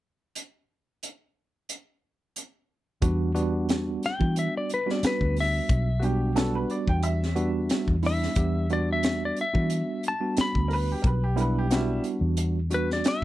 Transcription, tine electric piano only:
3.02 G3 B3 D4 F#4
3.35 G3 B3 D4 F#4
4.20 G3 B3 D4 F#4
4.86 G3 B3 D4 F#4
6.02 G3 B3 D4 F#4
6.35 G3 B3 D4 F#4
7.36 G3 B3 D4 F#4
8.03 G3 B3 D4 E4
8.36 G3 B3 D4 G4
8.70 G3 B3 D4 F#4
9.54 G3 B3 D4 F#4
10.20 G3 B3 D4 F#4
11.36 G3 B3 D4 E4
11.70 G3 B3 D4 F#4
12.70 G3 B3 D4 F#4

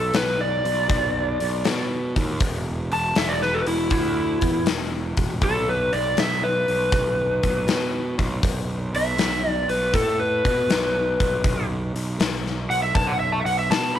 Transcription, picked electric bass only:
Already playing: B1
0.14 B1
0.65 B1
0.89 B1
1.41 B1
1.65 B2
2.16 D#2
2.40 E1
2.91 E1
3.15 E1
3.65 E1
3.91 D2
4.42 E2
4.65 E1
5.17 E1
5.42 B1
5.93 B1
6.17 B1
6.68 B1
6.92 B1
7.43 B1
7.67 B2
8.18 B1
8.43 B1
8.93 B1
9.17 B1
9.68 B1
9.93 A2
10.45 B2
10.68 B1
11.20 B1
11.44 B1
11.95 B1
12.19 B1
12.70 B1
12.95 B1
13.45 B1
13.70 B2

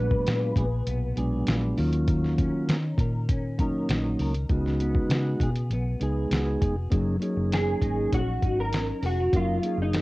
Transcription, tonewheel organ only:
Already playing: F#3 G#3 B3 D4
1.16 F#3 G#3 B3 D4
1.77 F#3 A#3 C#4 F4
3.58 F#3 A#3 C#4 D#4
4.49 G#3 B3 D#4 F#4
6.00 G#3 B3 D#4 G#4
6.90 A#3 C#4 D#4 G#4
7.20 A#3 C#4 D#4 G#4
9.32 A#3 C#4 D#4 A#4
9.62 A#3 C#4 D#4 G#4

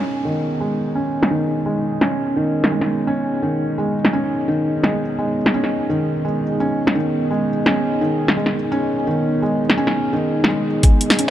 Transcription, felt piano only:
Already playing: C#4
0.25 D#3
0.60 G#3
0.95 C#4
1.31 D#3
1.66 G#3
2.01 C#4
2.36 D#3
2.72 G#3
3.07 C#4
3.42 D#3
3.78 G#3
4.13 C#4
4.48 D#3
4.83 G#3
5.19 G#3
5.54 C#4
5.89 D#3
6.25 G#3
6.60 C#4
6.95 D#3
7.31 G#3
7.66 C#4
8.01 D#3
8.37 G#3
8.72 C#4
9.07 D#3
9.42 G#3
9.78 C#4
10.13 D#3
10.48 G#3
10.84 G#3
11.19 C#4

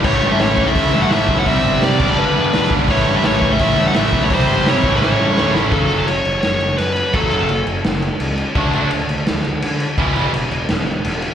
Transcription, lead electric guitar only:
0.05 C#5
0.32 E5
0.41 C#5
0.67 E5
1.02 F#5
1.12 E5
1.39 F#5
1.47 E5
1.84 D5
2.10 D5
2.18 B4
2.91 C#5
3.16 E5
3.25 C#5
3.52 E5
3.87 F#5
3.96 E5
4.24 C#5
4.34 C5
4.70 C#5
4.96 B4
5.03 C#5
5.73 A4
6.07 C#5
6.41 C#5
6.78 B4
7.14 A4

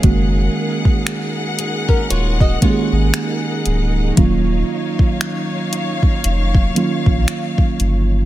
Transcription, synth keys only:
Already playing: C#5 F5
0.02 D#3 G#3 A#3 C#4 F#4
2.61 D#3 G#3 A#3 C#4 G4
2.70 G#4
4.16 D#3 F#3 A#3 C#4 F4
6.75 D#3 F#3 A#3 C#4 F4

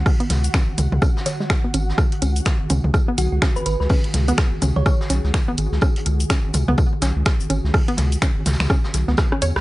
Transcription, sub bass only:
0.30 C#2
0.68 G#1
0.78 C#2
0.92 C#2
1.74 G#1
2.22 C#2
2.60 G#1
2.70 C#2
2.84 C#2
3.18 B1
3.32 C#2
3.56 G#1
3.66 G#1
3.80 C#2
4.14 C#2
4.52 G#1
4.62 C#2
4.76 C#2
5.10 B1
5.24 C#2
5.48 G#1
5.58 G#1
5.72 C#2
6.06 C#2
6.44 G#1
6.54 C#2
6.68 C#2
7.02 B1
7.16 C#2
7.40 G#1
7.50 G#1
7.64 C#2
7.98 C#2
8.36 G#1
8.46 C#2
8.60 C#2
8.94 B1
9.08 C#2
9.42 E2
9.56 C#2

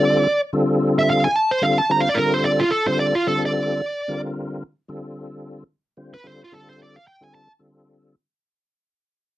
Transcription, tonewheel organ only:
Already playing: D3 G3 C4 F4 A4
0.53 D3 G3 C4 F4 A4
1.62 D3 G3 C4 F4 A4
1.89 D3 G3 C4 F4 C5
2.17 D3 G3 C4 F4 A4
2.86 D3 G3 C4 F4 A4
3.27 D3 G3 C4 F4 A4
4.08 D3 G3 C4 F4 A#4
4.88 D3 G3 C4 F4 A4
5.97 D3 G3 C4 F4 C5
6.24 D3 G3 C4 F4 A4
6.52 D3 G3 C4 F4 A4
7.21 D3 G3 C4 F4 A4
7.59 D3 G3 C4 F4 A4

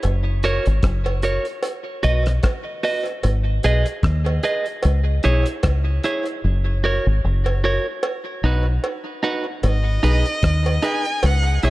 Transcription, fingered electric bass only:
0.05 F#1
0.67 G#1
0.84 F#1
2.04 B1
3.24 G#1
3.64 B1
4.04 D#2
4.85 C#2
5.25 B1
5.64 C#2
6.44 F#1
7.07 G#1
7.24 F#1
8.44 B1
9.64 G#1
10.04 B1
10.44 D#2
11.24 C#2
11.63 B1

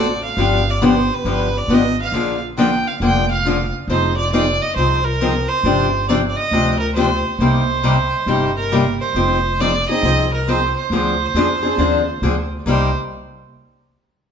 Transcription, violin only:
Already playing: D5
0.25 F5
0.70 D5
0.85 C5
1.14 B4
1.57 D5
1.73 D#5
2.02 F5
2.58 G5
2.87 F5
3.04 G5
3.31 F5
3.90 C5
4.17 D5
4.33 D5
4.62 D#5
4.76 C5
5.04 A#4
5.48 C5
6.08 D5
6.29 D5
6.36 D#5
6.80 A#4
6.95 C5
7.40 C5
8.56 A#4
9.01 C5
9.60 D5
9.89 D#5
10.34 A#4
10.49 C5
10.77 C5
12.68 C5

